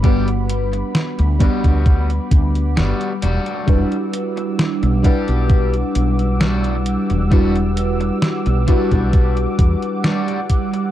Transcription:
<<
  \new Staff \with { instrumentName = "Analog synth pad" } { \time 4/4 \key e \minor \tempo 4 = 66 << { <b'' d'''>2.~ <b'' d'''>8 e'''8~ | e'''1~ | e'''1 | } \\ { <g fis''>1~ | <g fis''>1~ | <g fis''>1 | } >> }
  \new Staff \with { instrumentName = "FM electric piano" } { \time 4/4 \key e \minor <g b d' b' fis''>4. <g b d' b' fis''>2 r8 | <g d' e' fis' b'>4. <g d' e' b' fis''>2~ <g d' e' b' fis''>8 | <g d' e' fis' b'>4. <g d' e' fis' b'>2~ <g d' e' fis' b'>8 | }
  \new Staff \with { instrumentName = "Clean electric guitar" } { \time 4/4 \key e \minor <g b g'>16 r4 r16 <g b fis'>8. r8. <g b fis'>8 <g d' fis'>8~ | <g d' fis'>8 r4 <g d' g'>8. r8. <g d' fis'>8 r8 | <g d' fis'>16 r4 r16 <g d' fis'>8. r8. <g d' fis'>8 r8 | }
  \new Staff \with { instrumentName = "Fretless electric bass" } { \clef bass \time 4/4 \key e \minor g,,8. r8 d,16 r16 d,8 r16 d,8 g,,16 r16 e,,16 r16 | e,,16 r4 b,,16 r16 b,,8 r16 b,,4 r16 e,,16~ | e,,8. r8 b,,16 r16 b,,8 r16 e,16 r4 r16 | }
  \new DrumStaff \with { instrumentName = "Drums" } \drummode { \time 4/4 <hh bd>16 hh16 hh16 hh16 <hh sn>16 hh16 <hh bd>16 <hh bd>16 <hh bd>16 hh16 <hh bd>16 hh16 <hh sn>16 hh16 hh16 hh16 | <hh bd>16 hh16 hh16 hh16 <hh sn>16 hh16 <hh bd>16 hh16 <hh bd>16 hh16 hh16 hh16 <hh sn>16 hh16 hh16 hh16 | <hh bd>16 hh16 hh16 hh16 <hh sn>16 hh16 <hh bd>16 <hh bd>16 <hh bd>16 hh16 <hh bd>16 hh16 <hh sn>16 hh16 <hh bd>16 hh16 | }
>>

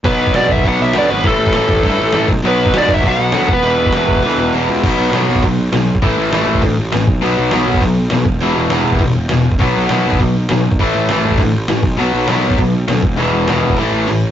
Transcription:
<<
  \new Staff \with { instrumentName = "Lead electric guitar" } { \time 4/4 \key a \mixolydian \tempo 4 = 201 b'4 d''8 e''8 fis''8 e''8 d''8 b'8 | a'2.~ a'8 r8 | b'4 d''8 e''8 fis''4. b'8~ | b'2. r4 |
r1 | r1 | r1 | r1 |
r1 | r1 | r1 | r1 | }
  \new Staff \with { instrumentName = "Overdriven electric guitar" } { \clef bass \time 4/4 \key a \mixolydian <b, fis b>4 <b, fis b>4 <b, fis b>4 <b, fis b>4 | <a, e a>4 <a, e a>4 <a, e a>4 <a, e a>8 r8 | <b, fis b>4 <b, fis b>4 <b, fis b>4 <b, fis b>8 r8 | <e, b, e>4 <e, b, e>4 <e, b, e>4 <e, b, e>4 |
<b, fis b>4 <b, fis b>4 <b, fis>8 r8 <b, fis>8 r8 | <a, e a>4 <a, e a>4 <a, e>8 r8 <a, e>8 r8 | <b, fis b>4 <b, fis b>4 <b, fis>8 r8 <b, fis>8 r8 | <e, b, e>4 <e, b, e>4 <e, b,>8 r8 <e, b,>8 r8 |
<b, fis b>4 <b, fis b>4 <b, fis>8 r8 <b, fis>8 r8 | <a, e a>4 <a, e a>4 <a, e>8 r8 <a, e>8 r8 | <b, fis b>4 <b, fis b>4 <b, fis>8 r8 <b, fis>8 r8 | <e, b, e>4 <e, b, e>4 <a, e a>4 <a, e>8 r8 | }
  \new Staff \with { instrumentName = "Overdriven electric guitar" } { \clef bass \time 4/4 \key a \mixolydian <b, fis b>4 <b, fis b>4 <b, fis b>4 <b, fis b>4 | <a, e a>4 <a, e a>4 <a, e a>4 <a, e a>8 r8 | <b, fis b>4 <b, fis b>4 <b, fis b>4 <b, fis b>8 r8 | <e, b, e>4 <e, b, e>4 <e, b, e>4 <e, b, e>4 |
<b, fis b>4 <b, fis b>4 <b, fis>8 r8 <b, fis>8 r8 | <a, e a>4 <a, e a>4 <a, e>8 r8 <a, e>8 r8 | <b, fis b>4 <b, fis b>4 <b, fis>8 r8 <b, fis>8 r8 | <e, b, e>4 <e, b, e>4 <e, b,>8 r8 <e, b,>8 r8 |
<b, fis b>4 <b, fis b>4 <b, fis>8 r8 <b, fis>8 r8 | <a, e a>4 <a, e a>4 <a, e>8 r8 <a, e>8 r8 | <b, fis b>4 <b, fis b>4 <b, fis>8 r8 <b, fis>8 r8 | <e, b, e>4 <e, b, e>4 <a, e a>4 <a, e>8 r8 | }
  \new Staff \with { instrumentName = "Picked electric bass" } { \clef bass \time 4/4 \key a \mixolydian b,,4 b,,8 b,,8 b,,8 b,,8 d,8 gis,,8 | a,,8 a,,8 a,,8 a,,8 g,8 a,,8 a,,8 b,,8 | b,,4 b,,8 b,,8 b,,8 b,,8 d,8 e,,8 | e,,8 e,,8 e,,8 e,,8 d,8 e,,8 e,,8 cis,8 |
b,,8 b,,8 b,,8 b,,8 b,,4 b,,4 | a,,8 a,,8 a,,8 a,,8 d,8 a,,8 a,,8 b,,8 | b,,8 b,,8 b,,8 b,,8 b,,4 b,,8 e,,8 | e,,8 e,,8 e,,8 e,,8 a,,8 e,,8 e,,4 |
b,,8 b,,8 b,,8 b,,8 b,,4 b,,4 | a,,8 a,,8 a,,8 a,,8 d,8 a,,8 a,,8 b,,8 | b,,8 b,,8 b,,8 b,,8 b,,4 d,8 e,,8 | e,,8 e,,8 e,,8 e,,8 a,,8 a,,8 a,,4 | }
  \new DrumStaff \with { instrumentName = "Drums" } \drummode { \time 4/4 <hho bd>8. bd16 <hho sn>8 bd16 bd16 <hho bd>4 <hho sn>4 | <hho bd>8. bd16 <hho sn>8 bd16 bd16 <hho bd>4 <hho sn>8 bd8 | hho8. bd16 <hho sn>8 bd16 bd16 <hho bd>4 <hho sn>8 bd8 | hho8. bd16 <hho sn>8 bd16 bd16 hho4 hho4 |
<cymc hho bd>4 <hho sn>8. bd16 <hho bd>4 <hho sn>8. bd16 | <hho bd>4 <hho sn>8. bd16 <hho bd>4 <hho sn>8 bd8 | hho4 <hho sn>8. bd16 <hho bd>4 <hho sn>8 bd8 | hho4 <hho sn>8. bd16 <hho bd>4 <hho sn>8. bd16 |
<hho bd>4 <hho sn>8. bd16 <hho bd>4 <hho sn>8. bd16 | <hho bd>4 <hho sn>8. bd16 <hho bd>4 <hho sn>8 bd8 | hho4 <hho sn>8. bd16 <hho bd>4 <hho sn>8 bd8 | hho4 <hho sn>8. bd16 hho4 hho4 | }
>>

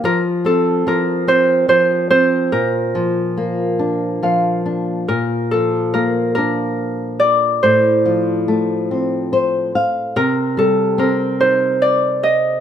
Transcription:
<<
  \new Staff \with { instrumentName = "Harp" } { \time 6/8 \key bes \major \tempo 4. = 48 bes'8 a'8 bes'8 c''8 c''8 c''8 | bes'2~ bes'8 r8 | bes'8 a'8 bes'8 bes'4 d''8 | c''4 r2 |
bes'8 a'8 bes'8 c''8 d''8 ees''8 | }
  \new Staff \with { instrumentName = "Nylon-string guitar" } { \time 6/8 \key bes \major << { r2. | r2 f''4 | r2. | r2 c''8 f''8 |
r2. | } \\ { f8 c'8 f8 c'8 f8 c'8 | bes,8 f8 bes8 d'8 f8 d'8 | bes,8 f8 bes8 d'4. | a,8 f8 a8 c'4. |
c8 g8 c'8 ees'4. | } >> }
>>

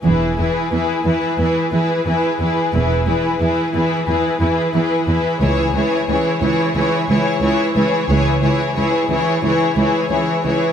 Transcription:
<<
  \new Staff \with { instrumentName = "Violin section" } { \time 4/4 \key e \major \tempo 4 = 90 <gis' b'>8 <gis' b'>8 <gis' b'>8 <gis' b'>8 <gis' b'>8 <gis' b'>8 <gis' b'>8 <gis' b'>8 | <gis' b'>8 <gis' b'>8 <gis' b'>8 <gis' b'>8 <gis' b'>8 <gis' b'>8 <gis' b'>8 <gis' b'>8 | <gis' cis''>8 <gis' cis''>8 <gis' cis''>8 <gis' cis''>8 <gis' cis''>8 <gis' cis''>8 <gis' cis''>8 <gis' cis''>8 | <gis' cis''>8 <gis' cis''>8 <gis' cis''>8 <gis' cis''>8 <gis' cis''>8 <gis' cis''>8 <gis' cis''>8 <gis' cis''>8 | }
  \new Staff \with { instrumentName = "Viola section" } { \time 4/4 \key e \major <e e'>8 <e e'>8 <e e'>8 <e e'>8 <e e'>8 <e e'>8 <e e'>8 <e e'>8 | <e e'>8 <e e'>8 <e e'>8 <e e'>8 <e e'>8 <e e'>8 <e e'>8 <e e'>8 | <e e'>8 <e e'>8 <e e'>8 <e e'>8 <e e'>8 <e e'>8 <e e'>8 <e e'>8 | <e e'>8 <e e'>8 <e e'>8 <e e'>8 <e e'>8 <e e'>8 <e e'>8 <e e'>8 | }
  \new Staff \with { instrumentName = "Cello section" } { \clef bass \time 4/4 \key e \major e,8 e,8 e,8 e,8 e,8 e,8 e,8 e,8 | e,8 e,8 e,8 e,8 e,8 e,8 e,8 e,8 | cis,8 cis,8 cis,8 cis,8 cis,8 cis,8 cis,8 cis,8 | cis,8 cis,8 cis,8 cis,8 cis,8 cis,8 cis,8 cis,8 | }
  \new Staff \with { instrumentName = "Double bass section" } { \clef bass \time 4/4 \key e \major e,,8 r2. r8 | e,,8 r2. r8 | cis,8 r2. r8 | cis,8 r2. r8 | }
>>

